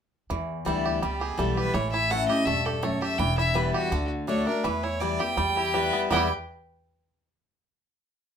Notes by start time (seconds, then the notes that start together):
0.30 E2 E3
0.65 D2 E3 G3 B3 E4
0.85 G4
1.02 C#2 B2 G3 G4
1.21 G4 G#4
1.38 B1 E3 G3 B3 E4 A4
1.56 G4 B4
1.74 A1 A2 E3 C#5
1.92 E4 E5
2.10 E3 A3 C#4 E4 F#5
2.28 C#4 E4 G4 D#5
2.45 E1 G2 A3 E5
2.65 G4 A4
2.83 F#2 A3 C#5
3.02 G4 E5
3.18 E1 E2 E3 G5
3.38 E4 E5
3.54 E3 G3 B3 E4 B4
3.74 F#4 G4
3.91 D2 D3
4.27 D3 A3 D4 F#4 C#5
4.47 D4 F#4 A#4
4.64 E2 E3 B4
4.83 E4 C#5
5.00 E3 G3 B3 E4 D5
5.19 B3 E4 G4 G5
5.37 E2 G3
5.56 E4 G4
5.74 E3 G3 B3 E4 B4
5.93 B3
6.10 E2 B2 E3 G3 B3 E4 B4 G5
6.14 E4 G4